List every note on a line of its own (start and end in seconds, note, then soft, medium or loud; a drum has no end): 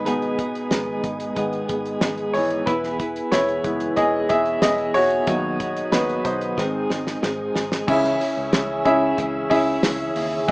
0.00 0.54 G#1 medium
0.00 0.08 D#4 medium
0.00 6.54 G#4 medium
0.00 0.05 B4 medium
0.00 2.64 D#5 medium
0.00 5.23 G#5 medium
0.00 2.64 D#6 medium
0.05 0.38 G#2 medium
0.05 2.63 B2 medium
0.05 0.39 D#3 medium
0.05 0.39 G#3 medium
0.05 1.35 G#3 soft
0.05 0.39 B3 medium
0.05 1.36 B3 medium
0.05 0.38 D#4 medium
0.05 1.01 D#4 medium
0.05 0.37 G#4 medium
0.05 1.00 B4 medium
0.05 closed hi-hat medium
0.22 closed hi-hat soft
0.38 0.71 G#3 soft
0.38 0.71 B3 soft
0.38 0.71 D#4 medium
0.38 0.71 G#4 medium
0.38 kick medium
0.38 closed hi-hat medium
0.55 closed hi-hat medium
0.71 0.98 G#1 medium
0.71 1.36 G#2 medium
0.71 1.37 D#3 medium
0.71 1.35 G#3 medium
0.71 1.36 B3 medium
0.71 1.36 D#4 medium
0.71 1.38 G#4 medium
0.71 snare loud
0.71 closed hi-hat medium
1.04 1.31 G#1 medium
1.04 kick medium
1.04 closed hi-hat medium
1.20 closed hi-hat medium
1.35 1.63 G#1 medium
1.35 1.66 D#3 soft
1.35 1.69 G#3 medium
1.35 1.66 G#3 soft
1.35 1.69 B3 medium
1.35 1.66 B3 medium
1.35 1.68 D#4 medium
1.35 1.67 G#4 medium
1.35 kick medium
1.35 closed hi-hat medium
1.53 closed hi-hat soft
1.68 1.96 G#1 medium
1.68 2.00 G#3 soft
1.68 2.01 B3 soft
1.68 2.01 D#4 soft
1.68 2.01 G#4 medium
1.68 kick medium
1.68 closed hi-hat medium
1.85 closed hi-hat soft
2.01 2.29 G#1 medium
2.01 2.34 G#2 medium
2.01 2.34 D#3 medium
2.01 2.34 G#3 medium
2.01 2.35 B3 medium
2.01 2.33 D#4 medium
2.01 2.32 G#4 medium
2.01 snare loud
2.01 closed hi-hat medium
2.18 closed hi-hat soft
2.33 2.61 G#1 loud
2.33 2.65 E3 medium
2.33 2.66 G#3 soft
2.33 2.66 B3 soft
2.33 2.67 D#4 medium
2.33 2.67 G#4 medium
2.33 2.68 C#5 medium
2.33 open hi-hat medium
2.51 closed hi-hat medium
2.66 3.20 E1 loud
2.66 2.99 E3 medium
2.66 3.00 B3 medium
2.66 5.25 E4 medium
2.66 3.28 E4 medium
2.66 2.99 E4 medium
2.66 2.98 G#4 medium
2.66 3.28 B4 medium
2.66 kick loud
2.66 closed hi-hat medium
2.83 snare soft
2.99 3.31 B3 soft
2.99 3.32 E4 soft
2.99 3.32 G#4 medium
2.99 kick medium
2.99 closed hi-hat medium
3.16 closed hi-hat medium
3.32 3.59 E1 medium
3.32 3.95 E3 medium
3.32 3.97 B3 medium
3.32 3.94 E4 medium
3.32 3.97 E4 medium
3.32 3.98 G#4 medium
3.32 3.99 C#5 medium
3.32 snare loud
3.32 closed hi-hat medium
3.49 closed hi-hat soft
3.64 3.91 F#1 medium
3.64 5.23 E3 medium
3.64 5.24 G#3 soft
3.64 5.24 B3 medium
3.64 kick medium
3.64 closed hi-hat medium
3.80 closed hi-hat medium
3.96 4.24 E1 loud
3.96 4.29 E3 medium
3.96 4.30 B3 medium
3.96 4.30 E4 medium
3.96 4.28 G#4 medium
3.96 4.30 D#5 loud
3.96 kick medium
3.96 closed hi-hat medium
4.29 4.57 E1 medium
4.29 4.62 B3 soft
4.29 4.62 E4 medium
4.29 4.62 G#4 medium
4.29 4.60 G#4 medium
4.29 4.63 E5 loud
4.29 kick medium
4.29 closed hi-hat medium
4.46 closed hi-hat soft
4.62 4.89 E1 loud
4.62 4.95 E3 medium
4.62 4.95 B3 medium
4.62 4.95 E4 medium
4.62 4.93 G#4 medium
4.62 4.94 G#4 medium
4.62 4.93 D#5 loud
4.62 snare loud
4.62 closed hi-hat loud
4.78 closed hi-hat soft
4.94 5.22 E1 medium
4.94 5.27 B3 soft
4.94 5.28 E4 medium
4.94 5.89 F#4 medium
4.94 5.27 G#4 medium
4.94 5.95 C#5 loud
4.94 open hi-hat medium
5.10 closed hi-hat medium
5.27 5.81 D#2 loud
5.27 6.54 B2 medium
5.27 6.54 D#3 medium
5.27 5.60 D#3 medium
5.27 6.54 F#3 soft
5.27 5.60 F#3 medium
5.27 5.60 B3 medium
5.27 5.60 D#4 medium
5.27 5.58 F#4 medium
5.27 7.85 D#5 medium
5.27 6.56 F#5 medium
5.27 7.85 D#6 medium
5.27 kick loud
5.27 closed hi-hat medium
5.59 5.92 B3 soft
5.59 5.92 D#4 medium
5.59 5.92 F#4 medium
5.59 kick medium
5.59 closed hi-hat medium
5.77 closed hi-hat medium
5.92 6.19 D#2 medium
5.92 6.57 D#3 medium
5.92 6.56 F#3 medium
5.92 6.57 B3 medium
5.92 6.23 D#4 medium
5.92 6.58 D#4 medium
5.92 6.58 F#4 medium
5.92 6.26 B4 medium
5.92 snare loud
5.92 closed hi-hat medium
6.09 closed hi-hat soft
6.25 6.52 B1 medium
6.25 7.52 D#4 medium
6.25 7.51 C5 medium
6.25 kick medium
6.25 closed hi-hat medium
6.41 closed hi-hat medium
6.57 6.85 G#1 loud
6.57 7.84 D#3 medium
6.57 6.90 G#3 medium
6.57 7.84 G#3 medium
6.57 6.90 C4 medium
6.57 7.84 C4 medium
6.57 6.89 D#4 medium
6.57 6.88 G#4 medium
6.57 7.87 C5 medium
6.57 7.87 G#5 medium
6.57 kick medium
6.57 snare medium
6.89 7.17 G#1 medium
6.89 7.22 G#3 soft
6.89 7.23 C4 soft
6.89 7.23 D#4 medium
6.89 7.22 G#4 medium
6.89 snare medium
7.07 snare medium
7.22 7.49 G#1 loud
7.22 7.55 G#2 medium
7.22 7.55 D#3 medium
7.22 7.56 G#3 medium
7.22 7.55 C4 medium
7.22 7.54 D#4 medium
7.22 7.53 G#4 medium
7.22 snare medium
7.55 7.82 G#1 medium
7.55 7.88 G#3 soft
7.55 7.88 C4 medium
7.55 7.88 D#4 medium
7.55 7.88 G#4 medium
7.55 snare medium
7.72 snare medium
7.87 8.15 C#2 loud
7.87 8.20 C#3 medium
7.87 8.82 C#3 medium
7.87 8.21 E3 medium
7.87 8.76 C#4 medium
7.87 8.21 C#4 medium
7.87 8.76 E4 medium
7.87 8.20 E4 medium
7.87 8.76 G#4 medium
7.87 8.18 G#4 medium
7.87 10.46 C#5 medium
7.87 10.46 E5 medium
7.87 8.76 E5 medium
7.87 10.52 G#5 medium
7.87 10.46 E6 medium
7.87 kick loud
7.87 crash loud
8.04 snare soft
8.20 8.52 C#4 medium
8.20 8.53 E4 medium
8.20 8.53 G#4 medium
8.20 hi-hat pedal medium
8.20 open hi-hat medium
8.37 8.50 C#2 medium
8.52 8.80 C#2 loud
8.52 8.85 C#3 medium
8.52 8.85 E3 medium
8.52 8.86 C#4 medium
8.52 8.85 E4 loud
8.52 8.84 G#4 medium
8.52 snare loud
8.52 hi-hat pedal medium
8.52 open hi-hat medium
8.85 9.12 C#2 medium
8.85 9.44 C#4 medium
8.85 9.44 E4 medium
8.85 9.18 E4 medium
8.85 9.18 G#4 medium
8.85 9.44 G#4 medium
8.85 9.44 E5 loud
8.85 kick medium
8.85 hi-hat pedal medium
8.85 open hi-hat medium
9.17 9.45 C#2 loud
9.17 9.50 E3 medium
9.17 9.51 C#4 medium
9.17 9.50 E4 medium
9.17 9.49 G#4 medium
9.17 kick medium
9.17 hi-hat pedal medium
9.17 open hi-hat medium
9.49 9.78 C#2 medium
9.49 10.38 C#4 medium
9.49 9.83 C#4 soft
9.49 10.38 E4 medium
9.49 9.83 E4 medium
9.49 9.83 G#4 medium
9.49 10.38 G#4 medium
9.49 10.39 E5 loud
9.49 kick medium
9.49 hi-hat pedal medium
9.49 open hi-hat medium
9.83 10.10 C#2 loud
9.83 10.47 C#3 medium
9.83 10.48 E3 medium
9.83 10.48 C#4 medium
9.83 10.49 E4 medium
9.83 10.49 G#4 loud
9.83 snare loud
9.83 hi-hat pedal medium
9.83 open hi-hat loud
10.16 10.43 D#2 medium
10.16 hi-hat pedal medium
10.16 open hi-hat medium
10.48 10.52 E2 loud
10.48 10.52 E3 medium
10.48 10.52 G#3 medium
10.48 10.52 B3 medium
10.48 10.52 E4 medium
10.48 10.52 G#4 medium
10.48 kick loud
10.48 hi-hat pedal medium
10.48 open hi-hat medium